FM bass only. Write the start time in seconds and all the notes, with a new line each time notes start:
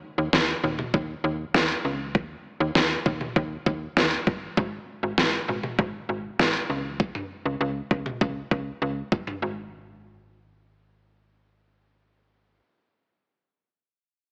0.18 D#2
0.33 D#2
0.64 D#2
0.94 D#2
1.24 D#2
1.54 D#2
1.85 C#2
2.15 D#2
2.60 D#2
2.76 D#2
3.06 D#2
3.36 D#2
3.66 D#2
3.97 D#2
4.27 G1
4.57 G#1
5.03 G#1
5.18 G#1
5.48 G#1
5.79 G#1
6.09 G#1
6.39 G#1
6.70 C#2
7.45 C#2
7.61 C#2
7.91 C#2
8.21 C#2
8.51 C#2
8.82 C#2
9.12 G1
9.42 G#1